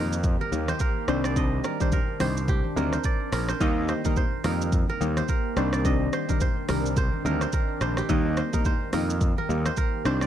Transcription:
Already playing: picked electric bass F2, synth keys D#3 G3 A#3 D#4, ambient pad D#3 A#3 G4, kora G4 A#4 C5 D#5
0.13 shaker
0.24 kick, low conga, shaker
0.40 kora A#4, high conga
0.52 picked electric bass D#2, synth keys D#3 G3 A#3 D#4, high conga, shaker
0.68 kora C5, cross-stick, high conga, shaker
0.79 kora A#4, kick, shaker
1.08 picked electric bass C2, synth keys D#3 G3 C4 D4, ambient pad C4 D4, kora C5, cross-stick, shaker
1.24 kora D5, cross-stick, shaker
1.36 synth keys D#3 G3 C4 D4, kora D#5, kick, shaker
1.64 kora A#4, cross-stick, shaker
1.80 synth keys D#3 G3 C4 D4, kora C5, kick, high conga, shaker
1.92 kora A#4, kick, low conga, shaker
2.20 picked electric bass C2, synth keys D#3 G3 C4 D4, kora C5, cross-stick, open hi-hat, high conga, low conga, shaker
2.37 shaker
2.48 kora G4, kick, low conga, shaker
2.65 high conga
2.76 picked electric bass D2, synth keys D#3 G3 C4 D4, kora A#4, high conga, shaker
2.93 kora C5, cross-stick, high conga, shaker
3.04 kora D5, kick, shaker
3.32 picked electric bass A#1, kora A#4, cross-stick, open hi-hat, shaker
3.49 kora C5, cross-stick, shaker
3.60 picked electric bass D#2, synth keys D#3 G3 A#3 D#4, ambient pad A#3 G4, kora D#5, kick, shaker
3.88 kora C5, cross-stick, shaker
4.04 synth keys D#3 G3 A#3 D#4, kora A#4, kick, high conga, shaker
4.16 kora C5, kick, low conga, shaker
4.44 picked electric bass F2, synth keys D#3 G3 A#3 D#4, kora A#4, cross-stick, open hi-hat, high conga, low conga, shaker
4.62 shaker
4.72 kick, low conga, shaker
4.89 kora A#4, high conga
5.00 picked electric bass D#2, synth keys D#3 G3 A#3 D#4, high conga, shaker
5.17 kora C5, cross-stick, high conga, shaker
5.28 kora A#4, kick, shaker
5.56 picked electric bass C2, synth keys D#3 G3 C4 D4, ambient pad C4 D4, kora C5, cross-stick, shaker
5.73 kora D5, cross-stick, shaker
5.84 synth keys D#3 G3 C4 D4, kora D#5, kick, shaker
6.13 kora C5, cross-stick, shaker
6.29 synth keys D#3 G3 C4 D4, kora A#4, kick, high conga, shaker
6.41 kora C5, kick, low conga, shaker
6.69 picked electric bass C2, synth keys D#3 G3 C4 D4, kora A#4, cross-stick, open hi-hat, high conga, low conga, shaker
6.86 shaker
6.97 kora C5, kick, low conga, shaker
7.13 high conga
7.25 picked electric bass D2, synth keys D#3 G3 C4 D4, kora A#4, high conga, shaker
7.41 kora C5, cross-stick, high conga, shaker
7.52 kora A#4, kick, shaker
7.81 picked electric bass A#1, kora C5, cross-stick, shaker
7.97 kora G4, cross-stick, shaker
8.09 picked electric bass D#2, synth keys D#3 G3 A#3 D#4, ambient pad A#3 G4, kora D#5, kick, shaker
8.37 kora C5, cross-stick, shaker
8.53 synth keys D#3 G3 A#3 D#4, kora A#4, kick, high conga, shaker
8.65 kora C5, kick, low conga, shaker
8.93 picked electric bass F2, synth keys D#3 G3 A#3 D#4, kora A#4, cross-stick, open hi-hat, high conga, low conga, shaker
9.10 shaker
9.21 kick, low conga, shaker
9.38 kora A#4, high conga
9.49 picked electric bass D#2, synth keys D#3 G3 A#3 D#4, high conga, shaker
9.66 kora C5, cross-stick, high conga, shaker
9.77 kora A#4, kick, shaker
10.05 picked electric bass C2, synth keys D#3 G3 C4 D4, kora C5, cross-stick, shaker
10.21 kora D5, cross-stick, shaker

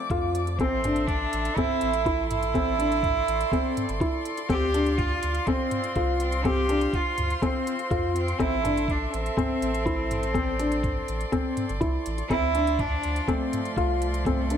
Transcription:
Already playing: string quartet F3 D5 D6, cello A3
0.10 sub bass F2, felt piano F4, kick, closed hi-hat, mid tom
0.35 closed hi-hat
0.47 closed hi-hat
0.58 sub bass A1, cello C4, felt piano C4, string quartet A4 E5 C6, kick, closed hi-hat
0.84 felt piano D4, closed hi-hat, mid tom
0.96 closed hi-hat
1.07 cello D4, kick, closed hi-hat
1.33 sub bass A1, closed hi-hat
1.45 closed hi-hat
1.56 felt piano C4, cello E4, kick, closed hi-hat, mid tom
1.81 sub bass A1, closed hi-hat
1.93 closed hi-hat
2.05 felt piano E4, kick, closed hi-hat
2.30 cello E4, closed hi-hat, mid tom
2.43 closed hi-hat
2.54 felt piano C4, string quartet D5, kick, closed hi-hat
2.79 felt piano D4, closed hi-hat
2.92 closed hi-hat
3.03 kick, closed hi-hat, mid tom
3.28 sub bass A1, closed hi-hat
3.41 closed hi-hat
3.52 felt piano C4, kick, closed hi-hat
3.77 closed hi-hat, mid tom
3.89 sub bass G1, closed hi-hat
4.00 felt piano E4, kick, closed hi-hat
4.25 closed hi-hat
4.37 closed hi-hat
4.49 sub bass D2, felt piano C4, string quartet F4, cello G4, kick, closed hi-hat
4.74 felt piano D4, closed hi-hat
4.86 closed hi-hat
4.98 cello F4, kick, closed hi-hat, mid tom
5.23 sub bass D2, closed hi-hat
5.34 closed hi-hat
5.47 felt piano C4, cello C4, kick, closed hi-hat
5.71 closed hi-hat, mid tom
5.84 closed hi-hat
5.95 sub bass C2, felt piano F4, kick, closed hi-hat
6.20 cello C4, closed hi-hat
6.32 closed hi-hat
6.44 felt piano C4, cello G4, string quartet C5, kick, closed hi-hat, mid tom
6.69 felt piano D4, closed hi-hat
6.81 closed hi-hat
6.93 cello F4, kick, closed hi-hat
7.18 sub bass D2, closed hi-hat, mid tom
7.30 closed hi-hat
7.42 felt piano C4, cello C4, kick, closed hi-hat
7.67 closed hi-hat
7.79 closed hi-hat
7.91 sub bass F2, felt piano F4, kick, closed hi-hat, mid tom
8.16 cello C4, closed hi-hat
8.28 closed hi-hat
8.38 sub bass A1, felt piano C4, cello E4, string quartet A4 E5, kick, closed hi-hat
8.64 felt piano D4, closed hi-hat, mid tom
8.77 closed hi-hat
8.88 cello D4, kick, closed hi-hat
9.13 sub bass A1, cello C4, closed hi-hat
9.26 closed hi-hat
9.37 felt piano C4, kick, closed hi-hat, mid tom
9.62 sub bass A1, closed hi-hat
9.74 closed hi-hat
9.86 felt piano E4, kick, closed hi-hat
10.11 closed hi-hat, mid tom
10.23 closed hi-hat
10.34 felt piano C4, string quartet D5, kick, closed hi-hat
10.59 felt piano D4, closed hi-hat
10.72 closed hi-hat
10.83 kick, closed hi-hat, mid tom
11.08 sub bass A1, closed hi-hat
11.21 closed hi-hat
11.32 felt piano C4, kick, closed hi-hat
11.57 closed hi-hat, mid tom
11.69 sub bass G1, closed hi-hat
11.80 sub bass C2, felt piano E4, kick, closed hi-hat
12.06 sub bass A1, closed hi-hat
12.18 closed hi-hat
12.30 sub bass D2, string quartet F3 C6, felt piano C4, cello E4, kick, closed hi-hat
12.55 felt piano D4, closed hi-hat
12.67 closed hi-hat
12.79 cello D4, kick, closed hi-hat, mid tom
13.03 sub bass D2, closed hi-hat
13.16 closed hi-hat
13.28 cello A3, felt piano C4, kick, closed hi-hat
13.53 closed hi-hat, mid tom
13.65 closed hi-hat
13.76 sub bass C2, felt piano F4, kick, closed hi-hat
14.02 cello A3, closed hi-hat
14.14 closed hi-hat
14.25 felt piano C4, kick, closed hi-hat, mid tom
14.50 felt piano D4, closed hi-hat

